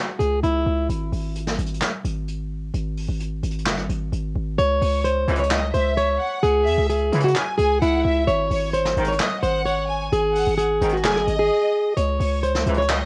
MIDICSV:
0, 0, Header, 1, 6, 480
1, 0, Start_track
1, 0, Key_signature, 4, "minor"
1, 0, Tempo, 461538
1, 928, Time_signature, 4, 2, 24, 8
1, 13575, End_track
2, 0, Start_track
2, 0, Title_t, "Violin section"
2, 0, Program_c, 0, 48
2, 5005, Note_on_c, 0, 73, 75
2, 5234, Note_off_c, 0, 73, 0
2, 5728, Note_on_c, 0, 75, 86
2, 5956, Note_off_c, 0, 75, 0
2, 5970, Note_on_c, 0, 76, 76
2, 6420, Note_off_c, 0, 76, 0
2, 6448, Note_on_c, 0, 78, 74
2, 6676, Note_off_c, 0, 78, 0
2, 6925, Note_on_c, 0, 76, 93
2, 7154, Note_off_c, 0, 76, 0
2, 7644, Note_on_c, 0, 80, 85
2, 7869, Note_off_c, 0, 80, 0
2, 7882, Note_on_c, 0, 80, 82
2, 8113, Note_off_c, 0, 80, 0
2, 8133, Note_on_c, 0, 78, 89
2, 8358, Note_off_c, 0, 78, 0
2, 8370, Note_on_c, 0, 76, 89
2, 8597, Note_off_c, 0, 76, 0
2, 8849, Note_on_c, 0, 73, 92
2, 9076, Note_off_c, 0, 73, 0
2, 9565, Note_on_c, 0, 75, 98
2, 9794, Note_off_c, 0, 75, 0
2, 9808, Note_on_c, 0, 78, 88
2, 10259, Note_off_c, 0, 78, 0
2, 10288, Note_on_c, 0, 80, 81
2, 10516, Note_off_c, 0, 80, 0
2, 10770, Note_on_c, 0, 78, 85
2, 10997, Note_off_c, 0, 78, 0
2, 11488, Note_on_c, 0, 80, 91
2, 11716, Note_off_c, 0, 80, 0
2, 11728, Note_on_c, 0, 75, 94
2, 12406, Note_off_c, 0, 75, 0
2, 12685, Note_on_c, 0, 73, 76
2, 12914, Note_off_c, 0, 73, 0
2, 13408, Note_on_c, 0, 75, 90
2, 13575, Note_off_c, 0, 75, 0
2, 13575, End_track
3, 0, Start_track
3, 0, Title_t, "Steel-string acoustic guitar"
3, 0, Program_c, 1, 25
3, 200, Note_on_c, 1, 68, 83
3, 425, Note_off_c, 1, 68, 0
3, 451, Note_on_c, 1, 64, 80
3, 901, Note_off_c, 1, 64, 0
3, 4765, Note_on_c, 1, 73, 109
3, 5218, Note_off_c, 1, 73, 0
3, 5245, Note_on_c, 1, 72, 80
3, 5585, Note_off_c, 1, 72, 0
3, 5609, Note_on_c, 1, 73, 71
3, 5719, Note_off_c, 1, 73, 0
3, 5968, Note_on_c, 1, 72, 81
3, 6189, Note_off_c, 1, 72, 0
3, 6211, Note_on_c, 1, 73, 84
3, 6661, Note_off_c, 1, 73, 0
3, 6685, Note_on_c, 1, 68, 106
3, 7137, Note_off_c, 1, 68, 0
3, 7170, Note_on_c, 1, 68, 88
3, 7507, Note_off_c, 1, 68, 0
3, 7531, Note_on_c, 1, 66, 85
3, 7640, Note_off_c, 1, 66, 0
3, 7880, Note_on_c, 1, 68, 85
3, 8105, Note_off_c, 1, 68, 0
3, 8132, Note_on_c, 1, 64, 83
3, 8581, Note_off_c, 1, 64, 0
3, 8604, Note_on_c, 1, 73, 103
3, 9057, Note_off_c, 1, 73, 0
3, 9084, Note_on_c, 1, 72, 76
3, 9424, Note_off_c, 1, 72, 0
3, 9448, Note_on_c, 1, 73, 75
3, 9558, Note_off_c, 1, 73, 0
3, 9806, Note_on_c, 1, 72, 78
3, 10028, Note_off_c, 1, 72, 0
3, 10044, Note_on_c, 1, 73, 85
3, 10497, Note_off_c, 1, 73, 0
3, 10533, Note_on_c, 1, 68, 107
3, 10982, Note_off_c, 1, 68, 0
3, 11001, Note_on_c, 1, 68, 82
3, 11342, Note_off_c, 1, 68, 0
3, 11369, Note_on_c, 1, 66, 78
3, 11479, Note_off_c, 1, 66, 0
3, 11493, Note_on_c, 1, 68, 81
3, 11829, Note_off_c, 1, 68, 0
3, 11849, Note_on_c, 1, 68, 81
3, 12412, Note_off_c, 1, 68, 0
3, 12446, Note_on_c, 1, 73, 111
3, 12898, Note_off_c, 1, 73, 0
3, 12926, Note_on_c, 1, 72, 77
3, 13265, Note_off_c, 1, 72, 0
3, 13291, Note_on_c, 1, 73, 74
3, 13400, Note_off_c, 1, 73, 0
3, 13575, End_track
4, 0, Start_track
4, 0, Title_t, "Brass ensemble"
4, 0, Program_c, 2, 61
4, 5487, Note_on_c, 2, 44, 110
4, 5487, Note_on_c, 2, 52, 115
4, 5488, Note_on_c, 2, 37, 107
4, 5640, Note_off_c, 2, 44, 0
4, 5640, Note_off_c, 2, 52, 0
4, 5641, Note_off_c, 2, 37, 0
4, 7408, Note_on_c, 2, 37, 100
4, 7408, Note_on_c, 2, 44, 105
4, 7408, Note_on_c, 2, 52, 114
4, 7561, Note_off_c, 2, 37, 0
4, 7561, Note_off_c, 2, 44, 0
4, 7561, Note_off_c, 2, 52, 0
4, 9327, Note_on_c, 2, 44, 96
4, 9327, Note_on_c, 2, 51, 116
4, 9480, Note_off_c, 2, 44, 0
4, 9480, Note_off_c, 2, 51, 0
4, 11247, Note_on_c, 2, 51, 111
4, 11248, Note_on_c, 2, 44, 100
4, 11400, Note_off_c, 2, 51, 0
4, 11401, Note_off_c, 2, 44, 0
4, 13168, Note_on_c, 2, 37, 107
4, 13168, Note_on_c, 2, 52, 114
4, 13169, Note_on_c, 2, 44, 105
4, 13321, Note_off_c, 2, 37, 0
4, 13321, Note_off_c, 2, 44, 0
4, 13321, Note_off_c, 2, 52, 0
4, 13575, End_track
5, 0, Start_track
5, 0, Title_t, "808-style bass"
5, 0, Program_c, 3, 38
5, 207, Note_on_c, 3, 37, 104
5, 438, Note_off_c, 3, 37, 0
5, 447, Note_on_c, 3, 37, 106
5, 678, Note_off_c, 3, 37, 0
5, 686, Note_on_c, 3, 37, 107
5, 917, Note_off_c, 3, 37, 0
5, 927, Note_on_c, 3, 32, 114
5, 1158, Note_off_c, 3, 32, 0
5, 1167, Note_on_c, 3, 32, 105
5, 1628, Note_off_c, 3, 32, 0
5, 1647, Note_on_c, 3, 32, 105
5, 1878, Note_off_c, 3, 32, 0
5, 2127, Note_on_c, 3, 32, 104
5, 2819, Note_off_c, 3, 32, 0
5, 2847, Note_on_c, 3, 32, 114
5, 3193, Note_off_c, 3, 32, 0
5, 3207, Note_on_c, 3, 32, 103
5, 3553, Note_off_c, 3, 32, 0
5, 3568, Note_on_c, 3, 32, 107
5, 3808, Note_on_c, 3, 30, 98
5, 3823, Note_off_c, 3, 32, 0
5, 3929, Note_on_c, 3, 32, 100
5, 3944, Note_off_c, 3, 30, 0
5, 4042, Note_off_c, 3, 32, 0
5, 4048, Note_on_c, 3, 32, 104
5, 4278, Note_off_c, 3, 32, 0
5, 4288, Note_on_c, 3, 32, 106
5, 4518, Note_off_c, 3, 32, 0
5, 4529, Note_on_c, 3, 32, 102
5, 4759, Note_off_c, 3, 32, 0
5, 4769, Note_on_c, 3, 37, 112
5, 4998, Note_off_c, 3, 37, 0
5, 5008, Note_on_c, 3, 37, 107
5, 5469, Note_off_c, 3, 37, 0
5, 5488, Note_on_c, 3, 37, 103
5, 5949, Note_off_c, 3, 37, 0
5, 5969, Note_on_c, 3, 37, 103
5, 6429, Note_off_c, 3, 37, 0
5, 6688, Note_on_c, 3, 37, 107
5, 6929, Note_on_c, 3, 40, 104
5, 6944, Note_off_c, 3, 37, 0
5, 7042, Note_off_c, 3, 40, 0
5, 7049, Note_on_c, 3, 37, 104
5, 7394, Note_off_c, 3, 37, 0
5, 7408, Note_on_c, 3, 49, 107
5, 7638, Note_off_c, 3, 49, 0
5, 7889, Note_on_c, 3, 37, 105
5, 8119, Note_off_c, 3, 37, 0
5, 8129, Note_on_c, 3, 37, 108
5, 8359, Note_off_c, 3, 37, 0
5, 8368, Note_on_c, 3, 37, 107
5, 8598, Note_off_c, 3, 37, 0
5, 8608, Note_on_c, 3, 32, 112
5, 8838, Note_off_c, 3, 32, 0
5, 8846, Note_on_c, 3, 32, 105
5, 9308, Note_off_c, 3, 32, 0
5, 9326, Note_on_c, 3, 32, 104
5, 9557, Note_off_c, 3, 32, 0
5, 9807, Note_on_c, 3, 32, 106
5, 10498, Note_off_c, 3, 32, 0
5, 10527, Note_on_c, 3, 32, 113
5, 10873, Note_off_c, 3, 32, 0
5, 10887, Note_on_c, 3, 32, 102
5, 11233, Note_off_c, 3, 32, 0
5, 11247, Note_on_c, 3, 32, 108
5, 11488, Note_on_c, 3, 30, 101
5, 11503, Note_off_c, 3, 32, 0
5, 11607, Note_on_c, 3, 32, 100
5, 11622, Note_off_c, 3, 30, 0
5, 11721, Note_off_c, 3, 32, 0
5, 11727, Note_on_c, 3, 32, 109
5, 11958, Note_off_c, 3, 32, 0
5, 12447, Note_on_c, 3, 37, 113
5, 12678, Note_off_c, 3, 37, 0
5, 12686, Note_on_c, 3, 37, 106
5, 13148, Note_off_c, 3, 37, 0
5, 13167, Note_on_c, 3, 37, 104
5, 13575, Note_off_c, 3, 37, 0
5, 13575, End_track
6, 0, Start_track
6, 0, Title_t, "Drums"
6, 208, Note_on_c, 9, 42, 84
6, 312, Note_off_c, 9, 42, 0
6, 450, Note_on_c, 9, 42, 70
6, 554, Note_off_c, 9, 42, 0
6, 928, Note_on_c, 9, 42, 69
6, 1032, Note_off_c, 9, 42, 0
6, 1169, Note_on_c, 9, 46, 85
6, 1273, Note_off_c, 9, 46, 0
6, 1409, Note_on_c, 9, 42, 96
6, 1513, Note_off_c, 9, 42, 0
6, 1527, Note_on_c, 9, 38, 67
6, 1631, Note_off_c, 9, 38, 0
6, 1648, Note_on_c, 9, 42, 64
6, 1727, Note_off_c, 9, 42, 0
6, 1727, Note_on_c, 9, 42, 66
6, 1807, Note_off_c, 9, 42, 0
6, 1807, Note_on_c, 9, 42, 67
6, 1887, Note_on_c, 9, 38, 118
6, 1888, Note_off_c, 9, 42, 0
6, 1888, Note_on_c, 9, 42, 78
6, 1891, Note_on_c, 9, 39, 91
6, 1991, Note_off_c, 9, 38, 0
6, 1992, Note_off_c, 9, 42, 0
6, 1995, Note_off_c, 9, 39, 0
6, 2127, Note_on_c, 9, 42, 83
6, 2231, Note_off_c, 9, 42, 0
6, 2369, Note_on_c, 9, 42, 70
6, 2473, Note_off_c, 9, 42, 0
6, 2847, Note_on_c, 9, 42, 72
6, 2951, Note_off_c, 9, 42, 0
6, 3089, Note_on_c, 9, 46, 82
6, 3193, Note_off_c, 9, 46, 0
6, 3329, Note_on_c, 9, 42, 96
6, 3433, Note_off_c, 9, 42, 0
6, 3567, Note_on_c, 9, 42, 81
6, 3648, Note_off_c, 9, 42, 0
6, 3648, Note_on_c, 9, 42, 61
6, 3728, Note_off_c, 9, 42, 0
6, 3728, Note_on_c, 9, 42, 47
6, 3808, Note_on_c, 9, 38, 118
6, 3809, Note_off_c, 9, 42, 0
6, 3809, Note_on_c, 9, 42, 78
6, 3811, Note_on_c, 9, 39, 90
6, 3912, Note_off_c, 9, 38, 0
6, 3913, Note_off_c, 9, 42, 0
6, 3915, Note_off_c, 9, 39, 0
6, 3928, Note_on_c, 9, 37, 100
6, 4033, Note_off_c, 9, 37, 0
6, 4048, Note_on_c, 9, 42, 83
6, 4152, Note_off_c, 9, 42, 0
6, 4290, Note_on_c, 9, 42, 70
6, 4394, Note_off_c, 9, 42, 0
6, 4768, Note_on_c, 9, 42, 72
6, 4872, Note_off_c, 9, 42, 0
6, 5009, Note_on_c, 9, 46, 88
6, 5113, Note_off_c, 9, 46, 0
6, 5249, Note_on_c, 9, 42, 98
6, 5353, Note_off_c, 9, 42, 0
6, 5488, Note_on_c, 9, 42, 67
6, 5568, Note_off_c, 9, 42, 0
6, 5568, Note_on_c, 9, 42, 68
6, 5649, Note_off_c, 9, 42, 0
6, 5649, Note_on_c, 9, 42, 68
6, 5728, Note_on_c, 9, 38, 125
6, 5730, Note_off_c, 9, 42, 0
6, 5730, Note_on_c, 9, 42, 81
6, 5732, Note_on_c, 9, 39, 94
6, 5832, Note_off_c, 9, 38, 0
6, 5834, Note_off_c, 9, 42, 0
6, 5836, Note_off_c, 9, 39, 0
6, 5969, Note_on_c, 9, 42, 90
6, 6073, Note_off_c, 9, 42, 0
6, 6211, Note_on_c, 9, 42, 71
6, 6315, Note_off_c, 9, 42, 0
6, 6689, Note_on_c, 9, 42, 74
6, 6793, Note_off_c, 9, 42, 0
6, 6930, Note_on_c, 9, 46, 84
6, 7034, Note_off_c, 9, 46, 0
6, 7170, Note_on_c, 9, 42, 98
6, 7274, Note_off_c, 9, 42, 0
6, 7409, Note_on_c, 9, 42, 67
6, 7488, Note_off_c, 9, 42, 0
6, 7488, Note_on_c, 9, 42, 65
6, 7569, Note_off_c, 9, 42, 0
6, 7569, Note_on_c, 9, 42, 68
6, 7648, Note_on_c, 9, 38, 117
6, 7649, Note_off_c, 9, 42, 0
6, 7649, Note_on_c, 9, 42, 78
6, 7652, Note_on_c, 9, 39, 92
6, 7752, Note_off_c, 9, 38, 0
6, 7753, Note_off_c, 9, 42, 0
6, 7756, Note_off_c, 9, 39, 0
6, 7888, Note_on_c, 9, 42, 84
6, 7992, Note_off_c, 9, 42, 0
6, 8129, Note_on_c, 9, 42, 70
6, 8233, Note_off_c, 9, 42, 0
6, 8607, Note_on_c, 9, 42, 71
6, 8711, Note_off_c, 9, 42, 0
6, 8848, Note_on_c, 9, 46, 85
6, 8952, Note_off_c, 9, 46, 0
6, 9088, Note_on_c, 9, 42, 96
6, 9192, Note_off_c, 9, 42, 0
6, 9207, Note_on_c, 9, 38, 69
6, 9311, Note_off_c, 9, 38, 0
6, 9327, Note_on_c, 9, 42, 67
6, 9407, Note_off_c, 9, 42, 0
6, 9407, Note_on_c, 9, 42, 68
6, 9487, Note_off_c, 9, 42, 0
6, 9487, Note_on_c, 9, 42, 67
6, 9567, Note_on_c, 9, 38, 118
6, 9568, Note_off_c, 9, 42, 0
6, 9568, Note_on_c, 9, 42, 82
6, 9571, Note_on_c, 9, 39, 96
6, 9671, Note_off_c, 9, 38, 0
6, 9672, Note_off_c, 9, 42, 0
6, 9675, Note_off_c, 9, 39, 0
6, 9808, Note_on_c, 9, 42, 86
6, 9912, Note_off_c, 9, 42, 0
6, 10049, Note_on_c, 9, 42, 72
6, 10153, Note_off_c, 9, 42, 0
6, 10528, Note_on_c, 9, 42, 72
6, 10632, Note_off_c, 9, 42, 0
6, 10768, Note_on_c, 9, 46, 88
6, 10872, Note_off_c, 9, 46, 0
6, 11009, Note_on_c, 9, 42, 97
6, 11113, Note_off_c, 9, 42, 0
6, 11248, Note_on_c, 9, 42, 80
6, 11328, Note_off_c, 9, 42, 0
6, 11328, Note_on_c, 9, 42, 64
6, 11407, Note_off_c, 9, 42, 0
6, 11407, Note_on_c, 9, 42, 49
6, 11487, Note_on_c, 9, 38, 118
6, 11488, Note_off_c, 9, 42, 0
6, 11488, Note_on_c, 9, 42, 80
6, 11491, Note_on_c, 9, 39, 97
6, 11591, Note_off_c, 9, 38, 0
6, 11592, Note_off_c, 9, 42, 0
6, 11595, Note_off_c, 9, 39, 0
6, 11608, Note_on_c, 9, 37, 101
6, 11712, Note_off_c, 9, 37, 0
6, 11728, Note_on_c, 9, 42, 88
6, 11832, Note_off_c, 9, 42, 0
6, 12447, Note_on_c, 9, 42, 74
6, 12551, Note_off_c, 9, 42, 0
6, 12689, Note_on_c, 9, 46, 87
6, 12793, Note_off_c, 9, 46, 0
6, 12929, Note_on_c, 9, 42, 96
6, 13033, Note_off_c, 9, 42, 0
6, 13047, Note_on_c, 9, 38, 70
6, 13151, Note_off_c, 9, 38, 0
6, 13168, Note_on_c, 9, 42, 68
6, 13248, Note_off_c, 9, 42, 0
6, 13248, Note_on_c, 9, 42, 69
6, 13329, Note_off_c, 9, 42, 0
6, 13329, Note_on_c, 9, 42, 68
6, 13408, Note_on_c, 9, 38, 120
6, 13409, Note_off_c, 9, 42, 0
6, 13409, Note_on_c, 9, 42, 81
6, 13412, Note_on_c, 9, 39, 97
6, 13512, Note_off_c, 9, 38, 0
6, 13513, Note_off_c, 9, 42, 0
6, 13516, Note_off_c, 9, 39, 0
6, 13575, End_track
0, 0, End_of_file